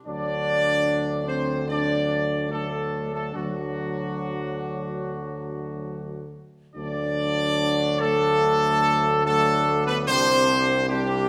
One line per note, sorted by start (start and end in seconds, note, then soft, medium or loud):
0.04 3.32 D2 medium
0.04 1.64 F#3 medium
0.04 1.64 D4 medium
0.04 1.23 D4 medium
0.04 1.24 D5 loud
1.27 1.68 C4 medium
1.27 1.66 C5 medium
1.68 2.47 F#3 medium
1.68 2.47 D4 medium
1.68 2.47 D5 medium
2.49 3.31 F#3 medium
2.49 3.09 A3 medium
2.49 3.31 D4 medium
2.49 3.10 A4 medium
3.12 3.33 A3 medium
3.12 3.34 A4 medium
3.32 6.28 F#3 medium
3.32 6.38 F#3 medium
3.32 6.37 D4 medium
3.32 6.29 F#4 medium
3.36 6.39 D2 medium
6.74 10.09 D2 medium
6.74 9.20 F#3 medium
6.74 9.20 D4 medium
6.74 7.96 D4 medium
6.74 7.96 D5 loud
8.00 9.21 A3 medium
8.00 9.24 A4 loud
9.24 10.03 F#3 medium
9.24 9.82 A3 medium
9.24 10.03 D4 medium
9.24 9.83 A4 loud
9.85 10.05 B3 medium
9.85 9.96 B4 loud
10.07 11.29 C2 medium
10.07 10.85 G3 medium
10.07 10.86 C4 medium
10.07 10.85 D4 medium
10.07 10.85 C5 loud
10.89 11.29 G3 medium
10.89 11.29 D4 medium
10.89 11.29 G4 loud